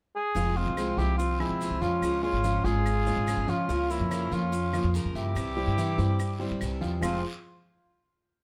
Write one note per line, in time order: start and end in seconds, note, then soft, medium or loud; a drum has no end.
0.16 0.58 G#4 loud
0.35 0.65 F1 medium
0.35 0.55 C3 medium
0.35 0.56 F3 medium
0.35 0.70 F3 medium
0.35 0.56 G#3 medium
0.35 0.56 C4 medium
0.35 0.70 F4 medium
0.35 0.55 F4 medium
0.35 0.70 F5 medium
0.35 long guiro medium
0.35 maracas medium
0.57 0.77 G#3 soft
0.57 0.99 C4 medium
0.57 0.77 C4 soft
0.57 0.99 F4 medium
0.57 0.77 F4 soft
0.67 0.97 C2 medium
0.77 0.97 C3 medium
0.77 0.98 F3 medium
0.77 0.94 G#3 medium
0.77 0.98 G#3 medium
0.77 0.98 C4 medium
0.77 0.98 F4 medium
0.77 0.95 G#4 medium
0.77 0.95 C5 medium
0.77 short guiro medium
0.77 claves medium
0.77 maracas medium
0.97 1.47 C2 medium
0.97 1.32 F3 medium
0.97 1.18 G#3 soft
0.97 1.19 C4 soft
0.97 1.18 E4 medium
0.97 1.33 F4 medium
0.97 1.19 F4 soft
0.97 1.17 G4 medium
0.97 1.33 F5 medium
0.97 short guiro medium
0.97 maracas soft
1.18 1.40 C4 medium
1.18 1.42 F4 medium
1.18 muted steel-string acoustic guitar stroke medium
1.18 long guiro medium
1.18 maracas medium
1.40 1.74 F3 medium
1.40 1.61 G#3 soft
1.40 1.83 C4 medium
1.40 1.61 C4 soft
1.40 1.82 E4 medium
1.40 1.60 F4 soft
1.40 1.74 G#4 medium
1.40 1.75 G#5 medium
1.40 claves medium
1.50 1.70 C2 medium
1.61 2.02 C3 medium
1.61 2.02 F3 medium
1.61 2.03 G#3 medium
1.61 2.03 C4 medium
1.61 2.03 F4 medium
1.61 short guiro medium
1.61 maracas medium
1.70 1.80 C2 medium
1.81 2.01 F2 medium
1.81 2.16 F3 medium
1.81 2.21 C#4 medium
1.81 2.22 F4 medium
1.81 2.16 F4 medium
1.81 2.16 F5 medium
1.81 short guiro medium
1.81 maracas soft
2.02 2.32 C#2 medium
2.02 2.23 C#3 medium
2.02 2.23 F3 medium
2.02 2.23 G#3 medium
2.02 2.24 C#4 medium
2.02 2.23 F4 medium
2.02 long guiro medium
2.02 claves medium
2.02 maracas medium
2.22 2.40 G#3 medium
2.22 2.44 G#3 soft
2.22 2.66 C#4 medium
2.22 2.44 C#4 soft
2.22 2.66 F4 medium
2.22 2.44 F4 soft
2.22 2.40 G#4 medium
2.22 2.41 C#5 medium
2.33 2.63 G#1 medium
2.44 2.64 C#3 medium
2.44 2.61 F3 medium
2.44 2.65 F3 medium
2.44 2.65 G#3 medium
2.44 2.65 C#4 medium
2.44 2.61 F4 medium
2.44 2.64 F4 medium
2.44 2.62 F5 medium
2.44 short guiro medium
2.44 maracas medium
2.64 3.14 G#1 medium
2.64 2.99 G#3 medium
2.64 2.85 G#3 soft
2.64 2.86 C#4 soft
2.64 3.49 F4 medium
2.64 2.86 F4 soft
2.64 3.51 G#4 medium
2.64 2.99 G#4 medium
2.64 2.99 C#5 medium
2.64 short guiro medium
2.64 maracas soft
2.86 muted steel-string acoustic guitar stroke medium
2.86 long guiro medium
2.86 claves medium
2.86 maracas medium
3.06 3.41 G#3 medium
3.06 3.27 G#3 soft
3.06 3.27 C#4 soft
3.06 3.27 F4 soft
3.06 3.41 G#4 medium
3.06 3.41 C#5 medium
3.06 maracas medium
3.16 3.36 G#1 medium
3.27 3.68 C#3 medium
3.27 3.68 F3 medium
3.27 3.69 G#3 medium
3.27 3.69 C#4 medium
3.27 3.69 F4 medium
3.27 short guiro medium
3.27 claves medium
3.27 maracas medium
3.37 3.47 G#1 medium
3.47 3.68 C#3 medium
3.47 3.65 F3 medium
3.47 3.90 C#4 medium
3.47 3.66 F4 medium
3.47 3.92 F4 medium
3.47 3.66 F5 medium
3.47 short guiro medium
3.47 maracas soft
3.69 3.99 C#2 medium
3.69 3.89 C#3 medium
3.69 4.03 F3 medium
3.69 3.90 F3 medium
3.69 3.90 A#3 medium
3.69 4.03 F4 medium
3.69 3.90 F4 medium
3.69 3.89 A#4 medium
3.69 4.04 F5 medium
3.69 long guiro medium
3.69 maracas medium
3.90 4.10 A#3 soft
3.90 4.32 C#4 medium
3.90 4.35 E4 medium
3.90 4.11 F4 soft
3.90 4.10 A#4 soft
3.90 maracas medium
4.00 4.30 F2 medium
4.11 4.31 C#3 medium
4.11 4.31 F3 medium
4.11 4.28 A#3 medium
4.11 4.31 A#3 medium
4.11 4.31 F4 medium
4.11 4.28 A#4 medium
4.11 4.30 A#4 medium
4.11 4.28 C#5 medium
4.11 short guiro medium
4.11 claves medium
4.11 maracas medium
4.31 4.81 F2 medium
4.31 4.66 F3 medium
4.31 4.51 A#3 soft
4.31 4.88 C#4 medium
4.31 4.66 F4 medium
4.31 4.52 F4 soft
4.31 4.89 F4 medium
4.31 4.52 A#4 soft
4.31 4.66 F5 medium
4.31 short guiro medium
4.31 maracas soft
4.52 muted steel-string acoustic guitar stroke medium
4.52 long guiro medium
4.52 maracas medium
4.73 5.08 F3 medium
4.73 4.94 A#3 soft
4.73 5.08 F4 medium
4.73 4.94 F4 soft
4.73 4.94 A#4 soft
4.73 5.08 F5 medium
4.73 claves medium
4.73 maracas medium
4.84 5.04 F2 medium
4.94 5.35 C#3 medium
4.94 5.35 F3 medium
4.94 5.36 A#3 medium
4.94 5.36 F4 medium
4.94 5.36 A#4 medium
4.94 short guiro medium
4.94 maracas medium
5.05 5.14 F2 medium
5.15 5.35 G2 medium
5.15 6.58 E4 medium
5.15 6.58 G4 medium
5.15 5.50 E5 medium
5.15 short guiro medium
5.15 maracas soft
5.35 5.66 C2 medium
5.35 5.56 C3 medium
5.35 5.56 E3 medium
5.35 5.56 G3 medium
5.35 5.56 C4 medium
5.35 5.56 E4 medium
5.35 long guiro medium
5.35 claves medium
5.35 maracas medium
5.57 5.74 G3 medium
5.57 5.78 G3 soft
5.57 5.77 C4 soft
5.57 5.77 E4 soft
5.57 5.74 G4 medium
5.57 5.74 C5 medium
5.67 5.97 G2 medium
5.77 5.98 C3 medium
5.77 5.95 E3 medium
5.77 5.98 E3 medium
5.77 5.98 G3 medium
5.77 5.98 C4 medium
5.77 5.95 E4 medium
5.77 5.97 E4 medium
5.77 5.95 E5 medium
5.77 short guiro medium
5.77 maracas medium
5.98 6.48 G2 medium
5.98 6.32 G3 medium
5.98 6.18 G3 soft
5.98 6.19 C4 soft
5.98 6.19 E4 soft
5.98 6.32 G4 medium
5.98 6.33 C5 medium
5.98 short guiro medium
5.98 maracas soft
6.19 muted steel-string acoustic guitar stroke medium
6.19 long guiro medium
6.19 claves medium
6.19 maracas medium
6.39 6.74 G3 medium
6.39 6.61 G3 soft
6.39 6.61 C4 soft
6.39 6.61 E4 soft
6.39 6.74 G4 medium
6.39 6.74 C5 medium
6.51 6.61 G2 medium
6.61 6.80 C2 medium
6.61 7.02 C3 medium
6.61 7.03 E3 medium
6.61 7.03 G3 medium
6.61 7.03 C4 medium
6.61 7.03 E4 medium
6.61 short guiro medium
6.61 claves medium
6.61 maracas medium
6.81 7.01 E2 medium
6.81 6.98 F3 medium
6.81 6.99 F4 medium
6.81 6.99 F5 medium
6.81 short guiro medium
6.81 maracas soft
7.01 7.22 F1 medium
7.01 7.20 F2 medium
7.01 7.20 C3 medium
7.01 7.21 F3 medium
7.01 7.20 F3 medium
7.01 7.20 G#3 medium
7.01 7.22 C4 medium
7.01 7.21 C4 medium
7.01 7.22 F4 medium
7.01 7.23 F4 medium
7.01 7.22 G#4 medium
7.01 7.22 C5 medium
7.01 7.22 F5 medium
7.01 long guiro medium
7.01 claves medium
7.01 maracas loud
7.05 7.21 F4 medium